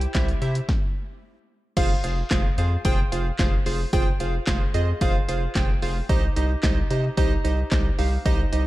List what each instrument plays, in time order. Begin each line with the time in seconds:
0.01 closed hi-hat
0.15 analog synth bass C2, synth keys E4 G4 C5 E5, kick, snare, clap, closed hi-hat
0.28 closed hi-hat
0.42 analog synth bass C3, synth keys E4 G4 C5 E5, closed hi-hat
0.55 closed hi-hat
0.69 kick, snare
1.77 analog synth bass F1, synth keys F4 G#4 C5 F5, kick, closed hi-hat, crash
2.04 analog synth bass F1, synth keys F4 G#4 C5 F5, closed hi-hat
2.31 analog synth bass F1, synth keys F4 G#4 C5 F5, kick, snare, clap, closed hi-hat
2.58 analog synth bass F2, synth keys F4 G#4 C5 F5, closed hi-hat
2.85 analog synth bass F1, synth keys F4 G#4 C5 G5, kick, closed hi-hat
3.12 analog synth bass F1, synth keys F4 G#4 C5 F5, closed hi-hat
3.39 analog synth bass F1, synth keys F4 G#4 C5 F5, kick, snare, clap, closed hi-hat
3.66 analog synth bass F1, synth keys F4 G#4 C5 F5, open hi-hat
3.93 analog synth bass F1, synth keys F4 G#4 C5 G5, kick, closed hi-hat
4.20 analog synth bass F1, synth keys F4 G#4 C5 F5, closed hi-hat
4.47 analog synth bass F1, synth keys F4 G#4 C5 F5, kick, snare, clap, closed hi-hat
4.74 analog synth bass F2, synth keys F4 G#4 C5 D#5, closed hi-hat
5.01 analog synth bass F1, synth keys F4 G#4 C5 F5, kick, closed hi-hat
5.28 analog synth bass F1, synth keys F4 G#4 C5 F5, closed hi-hat
5.55 analog synth bass F1, synth keys F4 G#4 C5 G5, kick, snare, clap, closed hi-hat
5.82 analog synth bass F1, synth keys F4 G#4 C5 F5, open hi-hat
6.09 analog synth bass C2, synth keys D#4 G4 C5 D#5, kick, closed hi-hat
6.36 analog synth bass C2, synth keys D#4 G4 C5 D#5, closed hi-hat
6.63 analog synth bass C2, synth keys D#4 G4 C5 D#5, kick, snare, clap, closed hi-hat
6.90 analog synth bass C3, synth keys D#4 G4 C5 D#5, closed hi-hat
7.17 analog synth bass C2, synth keys D#4 G4 C5 D#5, kick, closed hi-hat
7.44 analog synth bass C2, synth keys D#4 G4 C5 D#5, closed hi-hat
7.71 analog synth bass C2, synth keys D#4 G4 C5 D#5, kick, snare, clap, closed hi-hat
7.98 analog synth bass C2, synth keys D#4 G4 C5 F5, open hi-hat
8.26 analog synth bass C2, synth keys D#4 G4 C5 D#5, kick, closed hi-hat
8.53 analog synth bass C2, synth keys D#4 G4 C5 D#5, closed hi-hat